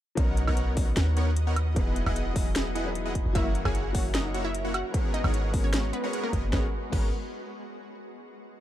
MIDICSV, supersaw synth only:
0, 0, Header, 1, 2, 480
1, 0, Start_track
1, 0, Key_signature, 5, "minor"
1, 0, Tempo, 397351
1, 211, Time_signature, 4, 2, 24, 8
1, 10391, End_track
2, 0, Start_track
2, 0, Title_t, "Supersaw synth"
2, 0, Program_c, 0, 81
2, 209, Note_on_c, 0, 63, 81
2, 209, Note_on_c, 0, 70, 84
2, 209, Note_on_c, 0, 73, 82
2, 209, Note_on_c, 0, 78, 102
2, 210, Note_on_c, 0, 59, 88
2, 545, Note_off_c, 0, 63, 0
2, 545, Note_off_c, 0, 70, 0
2, 545, Note_off_c, 0, 73, 0
2, 545, Note_off_c, 0, 78, 0
2, 546, Note_off_c, 0, 59, 0
2, 575, Note_on_c, 0, 70, 86
2, 575, Note_on_c, 0, 73, 87
2, 576, Note_on_c, 0, 59, 95
2, 576, Note_on_c, 0, 63, 89
2, 576, Note_on_c, 0, 78, 102
2, 903, Note_off_c, 0, 59, 0
2, 903, Note_off_c, 0, 63, 0
2, 903, Note_off_c, 0, 70, 0
2, 903, Note_off_c, 0, 73, 0
2, 903, Note_off_c, 0, 78, 0
2, 929, Note_on_c, 0, 59, 83
2, 929, Note_on_c, 0, 63, 79
2, 929, Note_on_c, 0, 70, 82
2, 929, Note_on_c, 0, 73, 79
2, 930, Note_on_c, 0, 78, 100
2, 1382, Note_off_c, 0, 59, 0
2, 1382, Note_off_c, 0, 63, 0
2, 1382, Note_off_c, 0, 70, 0
2, 1383, Note_off_c, 0, 73, 0
2, 1383, Note_off_c, 0, 78, 0
2, 1409, Note_on_c, 0, 63, 87
2, 1410, Note_on_c, 0, 73, 89
2, 1410, Note_on_c, 0, 78, 104
2, 1411, Note_on_c, 0, 59, 90
2, 1411, Note_on_c, 0, 70, 88
2, 1576, Note_off_c, 0, 59, 0
2, 1576, Note_off_c, 0, 63, 0
2, 1576, Note_off_c, 0, 70, 0
2, 1576, Note_off_c, 0, 73, 0
2, 1576, Note_off_c, 0, 78, 0
2, 1775, Note_on_c, 0, 59, 83
2, 1776, Note_on_c, 0, 63, 73
2, 1776, Note_on_c, 0, 70, 76
2, 1776, Note_on_c, 0, 73, 72
2, 1776, Note_on_c, 0, 78, 88
2, 1873, Note_off_c, 0, 59, 0
2, 1873, Note_off_c, 0, 63, 0
2, 1873, Note_off_c, 0, 70, 0
2, 1873, Note_off_c, 0, 73, 0
2, 1873, Note_off_c, 0, 78, 0
2, 2129, Note_on_c, 0, 59, 94
2, 2129, Note_on_c, 0, 75, 82
2, 2129, Note_on_c, 0, 78, 96
2, 2130, Note_on_c, 0, 64, 85
2, 2130, Note_on_c, 0, 68, 83
2, 2465, Note_off_c, 0, 59, 0
2, 2465, Note_off_c, 0, 64, 0
2, 2465, Note_off_c, 0, 68, 0
2, 2465, Note_off_c, 0, 75, 0
2, 2465, Note_off_c, 0, 78, 0
2, 2493, Note_on_c, 0, 59, 94
2, 2493, Note_on_c, 0, 68, 81
2, 2493, Note_on_c, 0, 75, 88
2, 2493, Note_on_c, 0, 78, 103
2, 2494, Note_on_c, 0, 64, 81
2, 2822, Note_off_c, 0, 59, 0
2, 2822, Note_off_c, 0, 64, 0
2, 2822, Note_off_c, 0, 68, 0
2, 2822, Note_off_c, 0, 75, 0
2, 2822, Note_off_c, 0, 78, 0
2, 2847, Note_on_c, 0, 59, 87
2, 2847, Note_on_c, 0, 75, 77
2, 2848, Note_on_c, 0, 64, 79
2, 2848, Note_on_c, 0, 78, 98
2, 3301, Note_off_c, 0, 59, 0
2, 3302, Note_off_c, 0, 64, 0
2, 3302, Note_off_c, 0, 75, 0
2, 3302, Note_off_c, 0, 78, 0
2, 3326, Note_on_c, 0, 75, 88
2, 3326, Note_on_c, 0, 78, 105
2, 3327, Note_on_c, 0, 59, 93
2, 3327, Note_on_c, 0, 64, 90
2, 3327, Note_on_c, 0, 68, 87
2, 3494, Note_off_c, 0, 59, 0
2, 3494, Note_off_c, 0, 64, 0
2, 3494, Note_off_c, 0, 68, 0
2, 3494, Note_off_c, 0, 75, 0
2, 3494, Note_off_c, 0, 78, 0
2, 3691, Note_on_c, 0, 59, 81
2, 3691, Note_on_c, 0, 68, 75
2, 3691, Note_on_c, 0, 75, 76
2, 3691, Note_on_c, 0, 78, 85
2, 3692, Note_on_c, 0, 64, 74
2, 3791, Note_off_c, 0, 59, 0
2, 3791, Note_off_c, 0, 64, 0
2, 3791, Note_off_c, 0, 68, 0
2, 3791, Note_off_c, 0, 75, 0
2, 3791, Note_off_c, 0, 78, 0
2, 4047, Note_on_c, 0, 58, 92
2, 4047, Note_on_c, 0, 64, 84
2, 4047, Note_on_c, 0, 78, 100
2, 4048, Note_on_c, 0, 66, 85
2, 4048, Note_on_c, 0, 73, 81
2, 4384, Note_off_c, 0, 58, 0
2, 4384, Note_off_c, 0, 64, 0
2, 4384, Note_off_c, 0, 66, 0
2, 4384, Note_off_c, 0, 73, 0
2, 4384, Note_off_c, 0, 78, 0
2, 4413, Note_on_c, 0, 58, 94
2, 4413, Note_on_c, 0, 64, 84
2, 4413, Note_on_c, 0, 66, 86
2, 4413, Note_on_c, 0, 78, 104
2, 4414, Note_on_c, 0, 73, 86
2, 4742, Note_off_c, 0, 58, 0
2, 4742, Note_off_c, 0, 64, 0
2, 4742, Note_off_c, 0, 66, 0
2, 4742, Note_off_c, 0, 73, 0
2, 4742, Note_off_c, 0, 78, 0
2, 4768, Note_on_c, 0, 58, 89
2, 4768, Note_on_c, 0, 66, 81
2, 4768, Note_on_c, 0, 73, 83
2, 4768, Note_on_c, 0, 78, 98
2, 4769, Note_on_c, 0, 64, 79
2, 5222, Note_off_c, 0, 58, 0
2, 5222, Note_off_c, 0, 64, 0
2, 5222, Note_off_c, 0, 66, 0
2, 5222, Note_off_c, 0, 73, 0
2, 5222, Note_off_c, 0, 78, 0
2, 5248, Note_on_c, 0, 64, 84
2, 5248, Note_on_c, 0, 66, 89
2, 5248, Note_on_c, 0, 73, 86
2, 5248, Note_on_c, 0, 78, 99
2, 5249, Note_on_c, 0, 58, 92
2, 5415, Note_off_c, 0, 58, 0
2, 5415, Note_off_c, 0, 64, 0
2, 5415, Note_off_c, 0, 66, 0
2, 5415, Note_off_c, 0, 73, 0
2, 5415, Note_off_c, 0, 78, 0
2, 5613, Note_on_c, 0, 58, 83
2, 5613, Note_on_c, 0, 64, 73
2, 5613, Note_on_c, 0, 66, 75
2, 5613, Note_on_c, 0, 73, 70
2, 5613, Note_on_c, 0, 78, 91
2, 5712, Note_off_c, 0, 58, 0
2, 5712, Note_off_c, 0, 64, 0
2, 5712, Note_off_c, 0, 66, 0
2, 5712, Note_off_c, 0, 73, 0
2, 5712, Note_off_c, 0, 78, 0
2, 5968, Note_on_c, 0, 59, 93
2, 5968, Note_on_c, 0, 68, 81
2, 5968, Note_on_c, 0, 73, 85
2, 5968, Note_on_c, 0, 78, 99
2, 5969, Note_on_c, 0, 70, 80
2, 6304, Note_off_c, 0, 73, 0
2, 6305, Note_off_c, 0, 59, 0
2, 6305, Note_off_c, 0, 68, 0
2, 6305, Note_off_c, 0, 70, 0
2, 6305, Note_off_c, 0, 78, 0
2, 6332, Note_on_c, 0, 68, 86
2, 6332, Note_on_c, 0, 73, 86
2, 6332, Note_on_c, 0, 78, 105
2, 6333, Note_on_c, 0, 59, 90
2, 6333, Note_on_c, 0, 70, 89
2, 6661, Note_off_c, 0, 78, 0
2, 6662, Note_off_c, 0, 59, 0
2, 6662, Note_off_c, 0, 68, 0
2, 6662, Note_off_c, 0, 70, 0
2, 6662, Note_off_c, 0, 73, 0
2, 6686, Note_on_c, 0, 70, 79
2, 6686, Note_on_c, 0, 73, 81
2, 6687, Note_on_c, 0, 59, 86
2, 6687, Note_on_c, 0, 68, 80
2, 6687, Note_on_c, 0, 78, 99
2, 7141, Note_off_c, 0, 59, 0
2, 7141, Note_off_c, 0, 68, 0
2, 7141, Note_off_c, 0, 70, 0
2, 7141, Note_off_c, 0, 73, 0
2, 7141, Note_off_c, 0, 78, 0
2, 7292, Note_on_c, 0, 59, 88
2, 7292, Note_on_c, 0, 70, 83
2, 7293, Note_on_c, 0, 68, 84
2, 7293, Note_on_c, 0, 73, 83
2, 7293, Note_on_c, 0, 78, 101
2, 7391, Note_off_c, 0, 59, 0
2, 7391, Note_off_c, 0, 68, 0
2, 7391, Note_off_c, 0, 70, 0
2, 7392, Note_off_c, 0, 73, 0
2, 7392, Note_off_c, 0, 78, 0
2, 7409, Note_on_c, 0, 68, 83
2, 7409, Note_on_c, 0, 70, 81
2, 7409, Note_on_c, 0, 73, 82
2, 7410, Note_on_c, 0, 59, 89
2, 7410, Note_on_c, 0, 78, 94
2, 7622, Note_off_c, 0, 68, 0
2, 7622, Note_off_c, 0, 70, 0
2, 7622, Note_off_c, 0, 73, 0
2, 7623, Note_off_c, 0, 59, 0
2, 7623, Note_off_c, 0, 78, 0
2, 7649, Note_on_c, 0, 68, 95
2, 7650, Note_on_c, 0, 59, 98
2, 7650, Note_on_c, 0, 70, 92
2, 7650, Note_on_c, 0, 73, 88
2, 7650, Note_on_c, 0, 75, 114
2, 7756, Note_off_c, 0, 59, 0
2, 7756, Note_off_c, 0, 68, 0
2, 7756, Note_off_c, 0, 70, 0
2, 7756, Note_off_c, 0, 73, 0
2, 7756, Note_off_c, 0, 75, 0
2, 7889, Note_on_c, 0, 78, 97
2, 7890, Note_on_c, 0, 59, 88
2, 7890, Note_on_c, 0, 68, 82
2, 7890, Note_on_c, 0, 70, 84
2, 7890, Note_on_c, 0, 73, 83
2, 8028, Note_off_c, 0, 59, 0
2, 8028, Note_off_c, 0, 68, 0
2, 8028, Note_off_c, 0, 70, 0
2, 8028, Note_off_c, 0, 73, 0
2, 8028, Note_off_c, 0, 78, 0
2, 8369, Note_on_c, 0, 59, 86
2, 8369, Note_on_c, 0, 68, 76
2, 8369, Note_on_c, 0, 70, 75
2, 8369, Note_on_c, 0, 73, 75
2, 8369, Note_on_c, 0, 78, 88
2, 8550, Note_off_c, 0, 59, 0
2, 8550, Note_off_c, 0, 68, 0
2, 8550, Note_off_c, 0, 70, 0
2, 8550, Note_off_c, 0, 73, 0
2, 8550, Note_off_c, 0, 78, 0
2, 10391, End_track
0, 0, End_of_file